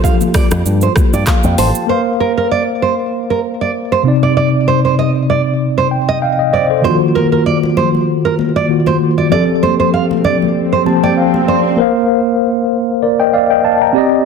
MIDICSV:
0, 0, Header, 1, 6, 480
1, 0, Start_track
1, 0, Key_signature, -2, "major"
1, 0, Tempo, 618557
1, 1467, Time_signature, 4, 2, 24, 8
1, 11058, End_track
2, 0, Start_track
2, 0, Title_t, "Nylon-string guitar"
2, 0, Program_c, 0, 24
2, 30, Note_on_c, 0, 77, 81
2, 117, Note_off_c, 0, 77, 0
2, 270, Note_on_c, 0, 74, 80
2, 357, Note_off_c, 0, 74, 0
2, 642, Note_on_c, 0, 72, 73
2, 713, Note_off_c, 0, 72, 0
2, 882, Note_on_c, 0, 74, 81
2, 953, Note_off_c, 0, 74, 0
2, 1229, Note_on_c, 0, 72, 76
2, 1316, Note_off_c, 0, 72, 0
2, 1470, Note_on_c, 0, 72, 80
2, 1557, Note_off_c, 0, 72, 0
2, 1710, Note_on_c, 0, 70, 78
2, 1797, Note_off_c, 0, 70, 0
2, 1843, Note_on_c, 0, 70, 68
2, 1913, Note_off_c, 0, 70, 0
2, 1951, Note_on_c, 0, 74, 82
2, 2038, Note_off_c, 0, 74, 0
2, 2191, Note_on_c, 0, 72, 73
2, 2278, Note_off_c, 0, 72, 0
2, 2563, Note_on_c, 0, 70, 63
2, 2633, Note_off_c, 0, 70, 0
2, 2803, Note_on_c, 0, 74, 69
2, 2874, Note_off_c, 0, 74, 0
2, 3042, Note_on_c, 0, 72, 77
2, 3113, Note_off_c, 0, 72, 0
2, 3282, Note_on_c, 0, 74, 66
2, 3353, Note_off_c, 0, 74, 0
2, 3390, Note_on_c, 0, 74, 81
2, 3477, Note_off_c, 0, 74, 0
2, 3630, Note_on_c, 0, 72, 74
2, 3716, Note_off_c, 0, 72, 0
2, 3762, Note_on_c, 0, 72, 65
2, 3833, Note_off_c, 0, 72, 0
2, 3870, Note_on_c, 0, 75, 72
2, 3957, Note_off_c, 0, 75, 0
2, 4111, Note_on_c, 0, 74, 72
2, 4197, Note_off_c, 0, 74, 0
2, 4482, Note_on_c, 0, 72, 65
2, 4553, Note_off_c, 0, 72, 0
2, 4723, Note_on_c, 0, 75, 76
2, 4793, Note_off_c, 0, 75, 0
2, 5071, Note_on_c, 0, 74, 70
2, 5157, Note_off_c, 0, 74, 0
2, 5310, Note_on_c, 0, 72, 82
2, 5397, Note_off_c, 0, 72, 0
2, 5550, Note_on_c, 0, 70, 80
2, 5637, Note_off_c, 0, 70, 0
2, 5682, Note_on_c, 0, 70, 70
2, 5753, Note_off_c, 0, 70, 0
2, 5789, Note_on_c, 0, 74, 82
2, 5876, Note_off_c, 0, 74, 0
2, 6030, Note_on_c, 0, 72, 72
2, 6117, Note_off_c, 0, 72, 0
2, 6402, Note_on_c, 0, 70, 63
2, 6473, Note_off_c, 0, 70, 0
2, 6643, Note_on_c, 0, 74, 71
2, 6713, Note_off_c, 0, 74, 0
2, 6882, Note_on_c, 0, 72, 76
2, 6953, Note_off_c, 0, 72, 0
2, 7122, Note_on_c, 0, 74, 69
2, 7193, Note_off_c, 0, 74, 0
2, 7230, Note_on_c, 0, 74, 86
2, 7317, Note_off_c, 0, 74, 0
2, 7471, Note_on_c, 0, 72, 74
2, 7557, Note_off_c, 0, 72, 0
2, 7602, Note_on_c, 0, 72, 66
2, 7673, Note_off_c, 0, 72, 0
2, 7711, Note_on_c, 0, 77, 76
2, 7797, Note_off_c, 0, 77, 0
2, 7951, Note_on_c, 0, 74, 75
2, 8037, Note_off_c, 0, 74, 0
2, 8323, Note_on_c, 0, 72, 66
2, 8393, Note_off_c, 0, 72, 0
2, 8563, Note_on_c, 0, 74, 78
2, 8633, Note_off_c, 0, 74, 0
2, 8910, Note_on_c, 0, 72, 71
2, 8997, Note_off_c, 0, 72, 0
2, 11058, End_track
3, 0, Start_track
3, 0, Title_t, "Tine electric piano"
3, 0, Program_c, 1, 4
3, 0, Control_c, 1, 64, 127
3, 0, Note_on_c, 1, 53, 81
3, 0, Note_on_c, 1, 65, 74
3, 0, Note_on_c, 1, 67, 68
3, 0, Note_on_c, 1, 69, 86
3, 989, Note_on_c, 1, 77, 75
3, 1111, Note_off_c, 1, 77, 0
3, 1120, Note_on_c, 1, 79, 70
3, 1220, Note_off_c, 1, 79, 0
3, 1228, Note_on_c, 1, 81, 73
3, 1427, Note_off_c, 1, 53, 0
3, 1433, Note_off_c, 1, 65, 0
3, 1440, Note_off_c, 1, 67, 0
3, 1448, Note_on_c, 1, 58, 67
3, 1451, Note_off_c, 1, 81, 0
3, 1461, Note_on_c, 1, 70, 63
3, 1472, Note_off_c, 1, 69, 0
3, 1473, Note_on_c, 1, 71, 53
3, 1477, Control_c, 1, 64, 0
3, 1487, Note_on_c, 1, 77, 77
3, 1524, Note_on_c, 1, 72, 63
3, 1526, Note_off_c, 1, 71, 0
3, 1595, Control_c, 1, 64, 127
3, 3107, Note_off_c, 1, 58, 0
3, 3113, Note_off_c, 1, 70, 0
3, 3126, Note_off_c, 1, 77, 0
3, 3128, Note_on_c, 1, 48, 73
3, 3141, Note_on_c, 1, 60, 68
3, 3145, Note_off_c, 1, 72, 0
3, 3154, Note_on_c, 1, 63, 66
3, 3158, Control_c, 1, 64, 0
3, 3167, Note_on_c, 1, 74, 78
3, 3307, Control_c, 1, 64, 127
3, 4568, Note_off_c, 1, 74, 0
3, 4588, Note_on_c, 1, 79, 68
3, 4811, Note_off_c, 1, 79, 0
3, 4827, Note_on_c, 1, 77, 71
3, 4827, Note_on_c, 1, 79, 63
3, 4832, Note_on_c, 1, 75, 51
3, 4950, Note_off_c, 1, 75, 0
3, 4950, Note_off_c, 1, 77, 0
3, 4959, Note_on_c, 1, 75, 69
3, 5027, Note_off_c, 1, 48, 0
3, 5033, Note_off_c, 1, 60, 0
3, 5040, Note_off_c, 1, 63, 0
3, 5055, Note_off_c, 1, 79, 0
3, 5060, Note_off_c, 1, 75, 0
3, 5068, Note_on_c, 1, 74, 70
3, 5068, Note_on_c, 1, 75, 70
3, 5073, Note_on_c, 1, 72, 57
3, 5189, Note_off_c, 1, 72, 0
3, 5193, Note_off_c, 1, 75, 0
3, 5199, Note_on_c, 1, 72, 66
3, 5203, Note_on_c, 1, 69, 55
3, 5288, Note_on_c, 1, 51, 68
3, 5291, Note_off_c, 1, 74, 0
3, 5300, Note_on_c, 1, 58, 63
3, 5314, Note_on_c, 1, 65, 66
3, 5318, Control_c, 1, 64, 0
3, 5327, Note_on_c, 1, 66, 79
3, 5427, Note_off_c, 1, 72, 0
3, 5430, Note_off_c, 1, 69, 0
3, 5451, Control_c, 1, 64, 127
3, 6709, Note_off_c, 1, 51, 0
3, 6715, Note_off_c, 1, 58, 0
3, 6722, Note_off_c, 1, 65, 0
3, 6729, Note_off_c, 1, 66, 0
3, 6738, Note_on_c, 1, 51, 51
3, 6745, Note_on_c, 1, 58, 50
3, 6752, Note_on_c, 1, 65, 47
3, 6758, Note_on_c, 1, 66, 58
3, 7209, Note_on_c, 1, 53, 70
3, 7222, Note_on_c, 1, 60, 64
3, 7223, Note_off_c, 1, 51, 0
3, 7226, Note_off_c, 1, 58, 0
3, 7230, Note_off_c, 1, 65, 0
3, 7233, Note_off_c, 1, 66, 0
3, 7235, Note_on_c, 1, 67, 67
3, 7237, Control_c, 1, 64, 0
3, 7247, Note_on_c, 1, 69, 78
3, 7374, Control_c, 1, 64, 127
3, 8394, Note_off_c, 1, 53, 0
3, 8401, Note_off_c, 1, 60, 0
3, 8407, Note_off_c, 1, 67, 0
3, 8413, Note_off_c, 1, 69, 0
3, 8419, Note_on_c, 1, 53, 52
3, 8426, Note_on_c, 1, 60, 51
3, 8429, Note_on_c, 1, 81, 68
3, 8432, Note_on_c, 1, 67, 52
3, 8439, Note_on_c, 1, 72, 58
3, 8551, Note_off_c, 1, 81, 0
3, 8561, Note_on_c, 1, 79, 67
3, 8661, Note_off_c, 1, 79, 0
3, 8669, Note_on_c, 1, 77, 69
3, 8892, Note_off_c, 1, 77, 0
3, 8908, Note_on_c, 1, 74, 68
3, 9128, Note_on_c, 1, 58, 79
3, 9131, Note_off_c, 1, 74, 0
3, 9141, Note_on_c, 1, 70, 70
3, 9143, Note_off_c, 1, 53, 0
3, 9144, Note_off_c, 1, 72, 0
3, 9147, Note_off_c, 1, 60, 0
3, 9150, Note_off_c, 1, 67, 0
3, 9154, Note_on_c, 1, 72, 72
3, 9159, Control_c, 1, 64, 0
3, 9167, Note_on_c, 1, 77, 87
3, 9306, Control_c, 1, 64, 127
3, 10085, Note_off_c, 1, 70, 0
3, 10091, Note_off_c, 1, 72, 0
3, 10098, Note_off_c, 1, 77, 0
3, 10107, Note_on_c, 1, 74, 66
3, 10112, Note_on_c, 1, 70, 55
3, 10233, Note_off_c, 1, 74, 0
3, 10236, Note_off_c, 1, 70, 0
3, 10240, Note_on_c, 1, 79, 73
3, 10244, Note_on_c, 1, 75, 60
3, 10342, Note_off_c, 1, 79, 0
3, 10345, Note_off_c, 1, 75, 0
3, 10347, Note_on_c, 1, 77, 76
3, 10351, Note_on_c, 1, 74, 65
3, 10473, Note_off_c, 1, 77, 0
3, 10475, Note_off_c, 1, 74, 0
3, 10480, Note_on_c, 1, 79, 72
3, 10485, Note_on_c, 1, 75, 60
3, 10582, Note_off_c, 1, 79, 0
3, 10585, Note_off_c, 1, 75, 0
3, 10589, Note_on_c, 1, 81, 73
3, 10593, Note_on_c, 1, 77, 59
3, 10714, Note_off_c, 1, 81, 0
3, 10716, Note_off_c, 1, 77, 0
3, 10720, Note_on_c, 1, 82, 62
3, 10725, Note_on_c, 1, 79, 56
3, 10787, Note_off_c, 1, 58, 0
3, 10808, Note_on_c, 1, 60, 80
3, 10821, Note_on_c, 1, 67, 72
3, 10833, Note_on_c, 1, 74, 73
3, 10836, Control_c, 1, 64, 0
3, 10846, Note_on_c, 1, 75, 85
3, 10948, Note_off_c, 1, 82, 0
3, 10951, Note_off_c, 1, 79, 0
3, 10963, Control_c, 1, 64, 127
3, 11058, Note_off_c, 1, 60, 0
3, 11058, Note_off_c, 1, 67, 0
3, 11058, Note_off_c, 1, 74, 0
3, 11058, Note_off_c, 1, 75, 0
3, 11058, End_track
4, 0, Start_track
4, 0, Title_t, "Fingered electric bass"
4, 0, Program_c, 2, 33
4, 400, Note_on_c, 2, 41, 96
4, 476, Note_off_c, 2, 41, 0
4, 508, Note_on_c, 2, 43, 100
4, 677, Note_off_c, 2, 43, 0
4, 879, Note_on_c, 2, 43, 96
4, 955, Note_off_c, 2, 43, 0
4, 1120, Note_on_c, 2, 41, 96
4, 1196, Note_off_c, 2, 41, 0
4, 1227, Note_on_c, 2, 33, 96
4, 1320, Note_off_c, 2, 33, 0
4, 11058, End_track
5, 0, Start_track
5, 0, Title_t, "Swell"
5, 0, Program_c, 3, 103
5, 5308, Note_on_c, 3, 60, 85
5, 9148, Note_off_c, 3, 60, 0
5, 11058, End_track
6, 0, Start_track
6, 0, Title_t, "Drums"
6, 29, Note_on_c, 9, 36, 95
6, 34, Note_on_c, 9, 64, 78
6, 36, Note_on_c, 9, 82, 70
6, 106, Note_off_c, 9, 36, 0
6, 112, Note_off_c, 9, 64, 0
6, 114, Note_off_c, 9, 82, 0
6, 161, Note_on_c, 9, 82, 56
6, 165, Note_on_c, 9, 63, 81
6, 239, Note_off_c, 9, 82, 0
6, 242, Note_off_c, 9, 63, 0
6, 265, Note_on_c, 9, 46, 68
6, 265, Note_on_c, 9, 82, 49
6, 267, Note_on_c, 9, 37, 102
6, 268, Note_on_c, 9, 36, 97
6, 270, Note_on_c, 9, 64, 68
6, 343, Note_off_c, 9, 46, 0
6, 343, Note_off_c, 9, 82, 0
6, 345, Note_off_c, 9, 36, 0
6, 345, Note_off_c, 9, 37, 0
6, 347, Note_off_c, 9, 64, 0
6, 397, Note_on_c, 9, 82, 102
6, 400, Note_on_c, 9, 37, 110
6, 407, Note_on_c, 9, 63, 63
6, 475, Note_off_c, 9, 82, 0
6, 477, Note_off_c, 9, 37, 0
6, 485, Note_off_c, 9, 63, 0
6, 510, Note_on_c, 9, 82, 79
6, 588, Note_off_c, 9, 82, 0
6, 631, Note_on_c, 9, 82, 49
6, 709, Note_off_c, 9, 82, 0
6, 742, Note_on_c, 9, 37, 98
6, 749, Note_on_c, 9, 36, 100
6, 750, Note_on_c, 9, 63, 82
6, 754, Note_on_c, 9, 82, 54
6, 820, Note_off_c, 9, 37, 0
6, 826, Note_off_c, 9, 36, 0
6, 828, Note_off_c, 9, 63, 0
6, 832, Note_off_c, 9, 82, 0
6, 882, Note_on_c, 9, 82, 87
6, 884, Note_on_c, 9, 63, 79
6, 960, Note_off_c, 9, 82, 0
6, 962, Note_off_c, 9, 63, 0
6, 980, Note_on_c, 9, 82, 84
6, 986, Note_on_c, 9, 37, 100
6, 986, Note_on_c, 9, 39, 100
6, 987, Note_on_c, 9, 36, 105
6, 1058, Note_off_c, 9, 82, 0
6, 1064, Note_off_c, 9, 36, 0
6, 1064, Note_off_c, 9, 37, 0
6, 1064, Note_off_c, 9, 39, 0
6, 1114, Note_on_c, 9, 82, 55
6, 1119, Note_on_c, 9, 63, 85
6, 1191, Note_off_c, 9, 82, 0
6, 1197, Note_off_c, 9, 63, 0
6, 1228, Note_on_c, 9, 46, 79
6, 1228, Note_on_c, 9, 82, 56
6, 1305, Note_off_c, 9, 46, 0
6, 1305, Note_off_c, 9, 82, 0
6, 1359, Note_on_c, 9, 82, 93
6, 1436, Note_off_c, 9, 82, 0
6, 5316, Note_on_c, 9, 64, 69
6, 5394, Note_off_c, 9, 64, 0
6, 5555, Note_on_c, 9, 63, 81
6, 5633, Note_off_c, 9, 63, 0
6, 5924, Note_on_c, 9, 63, 75
6, 6002, Note_off_c, 9, 63, 0
6, 6029, Note_on_c, 9, 64, 61
6, 6106, Note_off_c, 9, 64, 0
6, 6166, Note_on_c, 9, 63, 57
6, 6244, Note_off_c, 9, 63, 0
6, 6509, Note_on_c, 9, 63, 76
6, 6587, Note_off_c, 9, 63, 0
6, 6644, Note_on_c, 9, 63, 72
6, 6721, Note_off_c, 9, 63, 0
6, 6878, Note_on_c, 9, 63, 81
6, 6956, Note_off_c, 9, 63, 0
6, 7236, Note_on_c, 9, 64, 72
6, 7313, Note_off_c, 9, 64, 0
6, 7476, Note_on_c, 9, 63, 78
6, 7554, Note_off_c, 9, 63, 0
6, 7844, Note_on_c, 9, 63, 71
6, 7922, Note_off_c, 9, 63, 0
6, 7950, Note_on_c, 9, 64, 64
6, 8027, Note_off_c, 9, 64, 0
6, 8088, Note_on_c, 9, 63, 59
6, 8165, Note_off_c, 9, 63, 0
6, 8430, Note_on_c, 9, 63, 75
6, 8508, Note_off_c, 9, 63, 0
6, 8564, Note_on_c, 9, 63, 74
6, 8641, Note_off_c, 9, 63, 0
6, 8800, Note_on_c, 9, 63, 77
6, 8877, Note_off_c, 9, 63, 0
6, 11058, End_track
0, 0, End_of_file